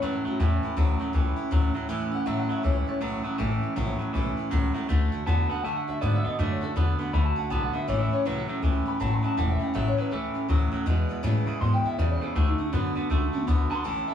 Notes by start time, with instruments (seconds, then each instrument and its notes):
0.02 upright bass F#2, clean electric guitar A2 F#3 B4, steel-string acoustic guitar A2 E3 A3 C#4 E4
0.15 clean electric guitar A4
0.25 clean electric guitar A2 F#3 F#4, steel-string acoustic guitar A3 C#4 E4, muted upright bass stroke
0.40 upright bass E2, steel-string acoustic guitar A2 E3 A3 C#4 E4, clean electric guitar A2 E3 A4
0.63 steel-string acoustic guitar A3 C#4 E4, muted upright bass stroke
0.76 upright bass D2, steel-string acoustic guitar A2 E3 A3 C#4 E4, clean electric guitar A2 F#3
0.99 clean electric guitar A2 F#3, steel-string acoustic guitar A3 C#4 E4, muted upright bass stroke
1.13 upright bass C#2, clean electric guitar A2 E3, steel-string acoustic guitar E3 A3 C#4 E4
1.36 steel-string acoustic guitar A3 C#4 E4, muted upright bass stroke
1.51 upright bass D2, steel-string acoustic guitar A2 E3 A3 C#4 E4, clean electric guitar A2 F#3
1.74 clean electric guitar A2 F#3, steel-string acoustic guitar A3 C#4 E4, muted upright bass stroke
1.89 upright bass E2, steel-string acoustic guitar A2 E3 A3 C#4 E4, clean electric guitar A2 E3
2.12 steel-string acoustic guitar A3 C#4 E4, clean electric guitar F#5, muted upright bass stroke
2.26 upright bass A1, steel-string acoustic guitar A2 E3 A3 C#4 E4, clean electric guitar A2 F#3 E5
2.39 clean electric guitar F#5
2.49 clean electric guitar A2 F#3 E5, steel-string acoustic guitar A3 C#4 E4, muted upright bass stroke
2.63 upright bass C#2, clean electric guitar A2 E3 C#5, steel-string acoustic guitar E3 A3 C#4 E4
2.77 clean electric guitar B4
2.86 steel-string acoustic guitar A3 C#4 E4, clean electric guitar C#5, muted upright bass stroke
3.01 upright bass B1, steel-string acoustic guitar A2 E3 A3 C#4 E4, clean electric guitar A2 F#3 B4
3.14 clean electric guitar A4
3.24 clean electric guitar A2 F#3 F#4, steel-string acoustic guitar A3 C#4 E4, muted upright bass stroke
3.38 upright bass A1, clean electric guitar A2 E3 A4, steel-string acoustic guitar A2 E3 A3 C#4 E4
3.61 steel-string acoustic guitar A3 C#4 E4, muted upright bass stroke
3.76 upright bass A#1, clean electric guitar A2 F#3, steel-string acoustic guitar A2 E3 A3 C#4 E4
3.99 clean electric guitar A2 F#3, steel-string acoustic guitar A3 C#4 E4, muted upright bass stroke
4.13 upright bass B1, clean electric guitar A2 E3, steel-string acoustic guitar E3 A3 C#4 E4
4.37 steel-string acoustic guitar A3 C#4 E4, muted upright bass stroke
4.51 upright bass C#2, clean electric guitar A2 F#3, steel-string acoustic guitar A2 E3 A3 C#4 E4
4.74 clean electric guitar A2 F#3, steel-string acoustic guitar A3 C#4 E4, muted upright bass stroke
4.88 upright bass D2, clean electric guitar D3 A3, steel-string acoustic guitar D3 A3 D4 F#4
5.12 steel-string acoustic guitar A3 D4 F#4, muted upright bass stroke
5.26 upright bass E2, clean electric guitar D3 B3 A5, steel-string acoustic guitar D3 A3 D4 F#4
5.49 clean electric guitar D3 B3 F#5, steel-string acoustic guitar A3 D4 F#4, muted upright bass stroke
5.63 upright bass F#2, clean electric guitar D3 A3 A5, steel-string acoustic guitar D3 A3 D4 F#4
5.76 clean electric guitar F#5
5.87 steel-string acoustic guitar A3 D4 F#4, clean electric guitar E5, muted upright bass stroke
6.01 upright bass G#2, clean electric guitar D3 B3 D5, steel-string acoustic guitar D3 A3 D4 F#4
6.14 clean electric guitar E5
6.24 clean electric guitar D3 B3 D#5, steel-string acoustic guitar A3 D4 F#4, muted upright bass stroke
6.38 upright bass F#2, clean electric guitar D3 A3 D5, steel-string acoustic guitar D3 A3 D4 F#4
6.51 clean electric guitar C#5
6.61 steel-string acoustic guitar A3 D4 F#4, clean electric guitar A4, muted upright bass stroke
6.76 upright bass E2, steel-string acoustic guitar D3 A3 D4 F#4, clean electric guitar D3 B3
6.99 clean electric guitar D3 B3, steel-string acoustic guitar A3 D4 F#4, muted upright bass stroke
7.13 upright bass D2, steel-string acoustic guitar D3 A3 D4 F#4, clean electric guitar D3 A3 B5
7.25 clean electric guitar A5
7.36 steel-string acoustic guitar A3 D4 F#4, clean electric guitar F#5, muted upright bass stroke
7.50 upright bass B1, steel-string acoustic guitar D3 A3 D4 F#4, clean electric guitar D3 B3 A5
7.63 clean electric guitar F#5
7.73 clean electric guitar D3 B3 E5, steel-string acoustic guitar A3 D4 F#4, muted upright bass stroke
7.88 upright bass A1, steel-string acoustic guitar A2 E3 A3 C#4 E4, clean electric guitar A2 E3 C#5
8.00 clean electric guitar E5
8.11 steel-string acoustic guitar A3 C#4 E4, clean electric guitar C#5, muted upright bass stroke
8.25 upright bass C2, steel-string acoustic guitar A2 E3 A3 C#4 E4, clean electric guitar A2 F#3 B4
8.38 clean electric guitar A4
8.48 clean electric guitar A2 F#3, steel-string acoustic guitar A3 C#4 E4, muted upright bass stroke
8.62 upright bass C#2, clean electric guitar A2 E3, steel-string acoustic guitar E3 A3 C#4 E4
8.86 steel-string acoustic guitar A3 C#4 E4, clean electric guitar B5, muted upright bass stroke
9.00 upright bass A1, steel-string acoustic guitar A2 E3 A3 C#4 E4, clean electric guitar A2 F#3 A5
9.13 clean electric guitar B5
9.22 clean electric guitar A2 F#3 A5, steel-string acoustic guitar A3 C#4 E4, muted upright bass stroke
9.37 upright bass E1, clean electric guitar A2 E3 F#5, steel-string acoustic guitar A2 E3 A3 C#4 E4
9.51 clean electric guitar E5
9.59 steel-string acoustic guitar A3 C#4 E4, clean electric guitar F#5, muted upright bass stroke
9.74 upright bass A1, steel-string acoustic guitar A2 E3 A3 C#4 E4, clean electric guitar A2 F#3 E5
9.88 clean electric guitar C#5
9.97 clean electric guitar A2 F#3 B4, steel-string acoustic guitar A3 C#4 E4, muted upright bass stroke
10.11 upright bass C#2, clean electric guitar A2 E3 A4, steel-string acoustic guitar E3 A3 C#4 E4
10.34 steel-string acoustic guitar A3 C#4 E4, muted upright bass stroke
10.49 upright bass D2, steel-string acoustic guitar A2 E3 A3 C#4 E4, clean electric guitar A2 F#3
10.71 clean electric guitar A2 F#3, steel-string acoustic guitar A3 C#4 E4, muted upright bass stroke
10.86 steel-string acoustic guitar E2 B2 E3 G#3 B3 E4, clean electric guitar E2 B2, upright bass E2
11.09 steel-string acoustic guitar E3 G#3 B3 E4, muted upright bass stroke
11.23 steel-string acoustic guitar E2 B2 E3 G#3 B3 E4, clean electric guitar E2 C#3, upright bass A2
11.46 clean electric guitar E2 C#3, steel-string acoustic guitar E3 G#3 B3 E4, muted upright bass stroke
11.61 clean electric guitar E2 B2 C6, upright bass G#2, steel-string acoustic guitar E3 G#3 B3 E4
11.74 clean electric guitar G5
11.84 steel-string acoustic guitar E3 G#3 B3 E4, clean electric guitar E5, muted upright bass stroke
11.98 clean electric guitar E2 C#3 D5, upright bass E2, steel-string acoustic guitar E2 B2 E3 G#3 B3 E4
12.11 clean electric guitar C5
12.21 clean electric guitar E2 C#3 A4, steel-string acoustic guitar E3 G#3 B3 E4, muted upright bass stroke
12.35 upright bass D2, steel-string acoustic guitar D3 A3 D4 F#4, clean electric guitar D3 A3 E4
12.49 clean electric guitar D#4
12.58 steel-string acoustic guitar A3 D4 F#4, clean electric guitar D4, muted upright bass stroke
12.72 upright bass F#2, steel-string acoustic guitar D3 A3 D4 F#4, clean electric guitar D3 B3 D4
12.95 clean electric guitar D3 B3, steel-string acoustic guitar A3 D4 F#4, muted upright bass stroke
13.10 upright bass C#2, steel-string acoustic guitar D3 A3 D4 F#4, clean electric guitar D3 A3
13.33 steel-string acoustic guitar A3 D4 F#4, muted upright bass stroke
13.47 upright bass D2, steel-string acoustic guitar D3 A3 D4 F#4, clean electric guitar D3 B3
13.70 clean electric guitar D3 B3 C6, steel-string acoustic guitar A3 D4 F#4, muted upright bass stroke
13.84 upright bass A1, steel-string acoustic guitar A2 E3 A3 C#4 E4, clean electric guitar A2 E3 A5
14.07 steel-string acoustic guitar A3 C#4 E4, clean electric guitar E5, muted upright bass stroke